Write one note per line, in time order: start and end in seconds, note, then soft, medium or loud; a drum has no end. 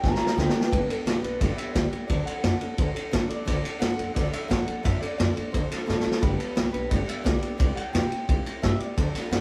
0.02 0.14 G1 loud
0.02 0.20 G3 medium
0.02 0.20 B3 medium
0.02 0.19 D4 medium
0.02 0.18 G4 medium
0.02 0.37 A#5 loud
0.02 kick loud
0.02 snare medium
0.15 0.37 G4 medium
0.15 snare medium
0.20 0.36 G3 soft
0.20 0.37 B3 medium
0.20 0.37 D4 medium
0.20 muted upright bass stroke medium
0.27 snare loud
0.36 0.48 D2 loud
0.36 0.54 G2 loud
0.36 0.54 D3 medium
0.36 0.55 G3 medium
0.36 0.54 B3 loud
0.36 0.54 D4 loud
0.36 0.53 G4 loud
0.36 0.55 A4 medium
0.36 0.54 G5 loud
0.36 snare medium
0.50 snare loud
0.54 0.71 G3 medium
0.54 0.72 B3 medium
0.54 0.72 D4 medium
0.54 0.71 G4 medium
0.54 1.03 B4 loud
0.54 0.72 G5 loud
0.54 muted upright bass stroke medium
0.61 snare loud
0.71 0.83 G1 loud
0.71 0.89 G2 medium
0.71 0.89 D3 medium
0.71 0.89 G3 medium
0.71 0.90 B3 medium
0.71 0.89 D4 medium
0.71 0.88 G4 medium
0.71 kick loud
0.71 ride loud
0.88 1.06 G3 soft
0.88 1.06 B3 soft
0.88 1.07 D4 medium
0.88 1.06 G4 medium
0.88 muted upright bass stroke medium
0.88 ride medium
1.05 1.16 C2 medium
1.05 1.23 G2 medium
1.05 1.23 D3 medium
1.05 1.24 G3 medium
1.05 1.24 B3 medium
1.05 1.23 D4 medium
1.05 1.21 G4 loud
1.05 snare loud
1.05 ride loud
1.23 1.34 B1 medium
1.23 1.39 G3 medium
1.23 1.41 B3 medium
1.23 1.41 D4 medium
1.23 1.40 G4 medium
1.23 1.40 B4 medium
1.23 ride medium
1.40 1.52 G1 loud
1.40 1.58 G3 medium
1.40 1.58 B3 medium
1.40 1.57 D4 medium
1.40 1.58 D5 medium
1.40 kick loud
1.40 snare soft
1.40 ride medium
1.44 1.56 G4 medium
1.57 1.74 G3 soft
1.57 1.74 B3 soft
1.57 1.75 D4 medium
1.57 1.75 G4 medium
1.57 1.75 E5 medium
1.57 muted upright bass stroke medium
1.57 ride medium
1.74 1.86 D2 medium
1.74 1.92 G2 medium
1.74 1.92 D3 medium
1.74 1.92 G3 medium
1.74 1.93 B3 medium
1.74 1.92 D4 loud
1.74 1.91 G4 loud
1.74 2.06 D5 medium
1.74 kick medium
1.74 snare loud
1.74 ride medium
1.92 2.08 G3 soft
1.92 2.09 B3 medium
1.92 2.09 D4 soft
1.92 2.09 G4 medium
1.92 muted upright bass stroke medium
1.92 ride medium
2.08 2.20 D2 loud
2.08 2.26 D3 medium
2.08 2.26 F#3 medium
2.08 2.27 C4 medium
2.08 2.27 D4 medium
2.08 2.25 A4 medium
2.08 2.24 D5 medium
2.08 kick loud
2.08 ride medium
2.26 2.44 C4 soft
2.26 2.45 D4 soft
2.26 2.44 A4 medium
2.26 3.29 F#5 medium
2.26 muted upright bass stroke medium
2.26 ride medium
2.44 2.54 F#2 medium
2.44 2.61 D3 medium
2.44 2.61 F#3 medium
2.44 2.62 C4 medium
2.44 2.62 D4 medium
2.44 2.60 A4 medium
2.44 snare loud
2.44 ride medium
2.61 2.77 C4 soft
2.61 2.79 D4 medium
2.61 2.78 A4 medium
2.61 muted upright bass stroke medium
2.61 ride medium
2.77 2.89 D2 loud
2.77 2.95 F#3 medium
2.77 2.96 C4 medium
2.77 2.95 D4 medium
2.77 2.93 A4 medium
2.77 kick loud
2.77 ride medium
2.95 3.12 C4 medium
2.95 3.12 D4 medium
2.95 3.12 A4 medium
2.95 muted upright bass stroke medium
2.95 ride medium
3.11 3.23 A2 medium
3.11 3.29 D3 loud
3.11 3.30 F#3 loud
3.11 3.30 C4 loud
3.11 3.29 D4 medium
3.11 3.28 A4 loud
3.11 kick medium
3.11 snare loud
3.11 ride medium
3.29 3.45 C4 soft
3.29 3.46 D4 soft
3.29 3.46 A4 medium
3.29 3.80 D5 loud
3.29 muted upright bass stroke medium
3.29 ride medium
3.45 3.58 D2 loud
3.45 3.63 D3 medium
3.45 3.64 F#3 medium
3.45 3.64 C4 medium
3.45 3.63 D4 medium
3.45 3.61 A4 medium
3.45 kick loud
3.45 snare soft
3.45 ride medium
3.62 3.79 C4 soft
3.62 3.80 D4 soft
3.62 3.81 A4 medium
3.62 muted upright bass stroke medium
3.62 ride medium
3.79 3.92 G2 medium
3.79 3.98 D3 medium
3.79 3.98 F#3 medium
3.79 3.98 C4 medium
3.79 3.97 D4 medium
3.79 3.95 A4 loud
3.79 4.13 F#5 loud
3.79 snare loud
3.79 ride loud
3.96 4.10 F#2 loud
3.96 4.14 C4 soft
3.96 4.15 D4 medium
3.96 4.15 A4 medium
3.96 ride medium
4.14 4.27 D2 loud
4.14 4.32 F#3 medium
4.14 4.33 C4 medium
4.14 4.32 D4 medium
4.14 4.30 A4 medium
4.14 4.31 D5 loud
4.14 kick loud
4.14 snare soft
4.14 ride medium
4.32 4.49 C4 soft
4.32 4.49 D4 medium
4.32 4.50 A4 medium
4.32 4.49 E5 medium
4.32 muted upright bass stroke medium
4.32 ride medium
4.48 4.61 A2 medium
4.48 4.67 D3 loud
4.48 4.67 F#3 loud
4.48 4.67 C4 loud
4.48 4.66 D4 medium
4.48 4.65 A4 medium
4.48 4.84 F#5 medium
4.48 kick medium
4.48 snare loud
4.48 ride medium
4.66 4.83 C4 soft
4.66 4.84 D4 medium
4.66 4.84 A4 medium
4.66 muted upright bass stroke medium
4.66 ride medium
4.83 4.96 F#2 loud
4.83 5.01 D3 medium
4.83 5.02 F#3 medium
4.83 5.02 C4 medium
4.83 5.01 D4 medium
4.83 4.99 A4 medium
4.83 5.00 E5 loud
4.83 kick loud
4.83 snare soft
4.83 ride medium
5.01 5.19 C4 soft
5.01 5.18 D4 medium
5.01 5.18 A4 medium
5.01 5.17 D5 medium
5.01 muted upright bass stroke medium
5.01 ride medium
5.18 5.30 F#2 medium
5.18 5.36 D3 medium
5.18 5.36 F#3 medium
5.18 5.36 C4 medium
5.18 5.35 D4 medium
5.18 5.34 A4 medium
5.18 5.52 D5 loud
5.18 snare loud
5.18 ride loud
5.35 5.52 C4 soft
5.35 5.53 D4 soft
5.35 5.53 A4 medium
5.35 muted upright bass stroke medium
5.35 ride medium
5.52 5.65 D2 loud
5.52 5.70 F#3 medium
5.52 5.70 C4 medium
5.52 5.69 D4 medium
5.52 5.67 A4 medium
5.52 5.89 C5 medium
5.52 kick loud
5.52 ride medium
5.69 5.86 C4 soft
5.69 5.86 D4 soft
5.69 5.87 A4 medium
5.69 muted upright bass stroke medium
5.69 snare soft
5.69 ride medium
5.86 6.00 A2 medium
5.86 6.04 D3 medium
5.86 6.04 F#3 medium
5.86 6.05 C4 medium
5.86 6.04 D4 medium
5.86 6.23 A4 medium
5.86 6.02 A4 loud
5.86 snare medium
6.00 6.22 A4 medium
6.00 snare medium
6.05 6.22 C4 soft
6.05 6.22 D4 medium
6.05 muted upright bass stroke medium
6.11 snare loud
6.21 6.33 G1 medium
6.21 6.39 G2 medium
6.21 6.39 D3 medium
6.21 6.39 G3 loud
6.21 6.39 B3 medium
6.21 6.37 D4 medium
6.21 6.36 G4 medium
6.21 6.54 B4 loud
6.21 kick loud
6.21 snare soft
6.21 ride medium
6.37 6.55 G3 soft
6.37 6.55 B3 soft
6.37 6.56 D4 soft
6.37 6.56 G4 soft
6.37 muted upright bass stroke medium
6.37 ride medium
6.55 6.68 C2 medium
6.55 6.73 G2 medium
6.55 6.73 D3 medium
6.55 6.74 G3 medium
6.55 6.73 B3 medium
6.55 6.72 D4 medium
6.55 6.71 G4 medium
6.55 snare loud
6.55 ride medium
6.72 6.85 B1 loud
6.72 6.88 G3 medium
6.72 6.90 B3 soft
6.72 6.91 D4 medium
6.72 6.90 G4 medium
6.72 6.90 B4 medium
6.72 ride medium
6.90 7.02 G1 loud
6.90 7.08 G3 medium
6.90 7.07 B3 medium
6.90 7.06 D4 medium
6.90 7.05 G4 medium
6.90 7.08 D5 loud
6.90 kick loud
6.90 ride medium
7.06 7.23 G3 soft
7.06 7.23 B3 medium
7.06 7.24 D4 soft
7.06 7.24 G4 medium
7.06 7.24 E5 medium
7.06 muted upright bass stroke medium
7.06 ride medium
7.23 7.36 B1 loud
7.23 7.42 G2 medium
7.23 7.42 D3 medium
7.23 7.42 G3 medium
7.23 7.42 B3 loud
7.23 7.41 D4 medium
7.23 7.40 G4 loud
7.23 7.58 D5 medium
7.23 kick medium
7.23 snare loud
7.23 ride medium
7.41 7.57 G3 soft
7.41 7.59 B3 soft
7.41 7.59 D4 medium
7.41 7.59 G4 medium
7.41 muted upright bass stroke medium
7.41 ride medium
7.58 7.71 C2 loud
7.58 7.76 C3 medium
7.58 7.77 G3 medium
7.58 7.77 C4 loud
7.58 7.76 E4 loud
7.58 7.74 G4 loud
7.58 7.75 D5 loud
7.58 kick loud
7.58 ride medium
7.75 7.93 C4 soft
7.75 7.94 E4 medium
7.75 7.94 G4 medium
7.75 8.62 G5 loud
7.75 muted upright bass stroke medium
7.75 ride medium
7.93 8.05 E2 medium
7.93 8.11 C3 medium
7.93 8.11 G3 medium
7.93 8.12 C4 medium
7.93 8.11 E4 medium
7.93 8.09 G4 medium
7.93 snare loud
7.93 ride medium
8.10 8.28 C4 medium
8.10 8.28 E4 medium
8.10 8.28 G4 medium
8.10 muted upright bass stroke medium
8.10 ride medium
8.28 8.40 C2 loud
8.28 8.45 G3 medium
8.28 8.46 C4 medium
8.28 8.46 E4 medium
8.28 8.44 G4 medium
8.28 kick loud
8.28 ride medium
8.45 8.62 C4 medium
8.45 8.63 E4 medium
8.45 8.63 G4 medium
8.45 muted upright bass stroke medium
8.45 ride medium
8.62 8.74 G2 loud
8.62 8.80 C3 medium
8.62 8.80 G3 medium
8.62 8.81 C4 medium
8.62 8.81 E4 medium
8.62 8.79 G4 medium
8.62 8.79 E5 loud
8.62 kick medium
8.62 snare loud
8.62 ride medium
8.79 8.98 E4 soft
8.79 8.97 G4 medium
8.79 9.31 D5 loud
8.79 muted upright bass stroke medium
8.79 ride medium
8.83 8.97 C4 soft
8.97 9.08 D2 loud
8.97 9.14 D3 medium
8.97 9.15 F#3 medium
8.97 9.15 C4 medium
8.97 9.15 D4 medium
8.97 9.12 A4 medium
8.97 kick loud
8.97 ride medium
9.14 9.31 C4 soft
9.14 9.31 D4 medium
9.14 9.31 A4 medium
9.14 muted upright bass stroke medium
9.14 snare soft
9.14 ride medium
9.31 9.41 G2 loud
9.31 9.41 D3 medium
9.31 9.41 F#3 medium
9.31 9.41 C4 loud
9.31 9.41 D4 medium
9.31 9.41 A4 medium
9.31 9.41 F#5 loud
9.31 snare loud
9.31 ride loud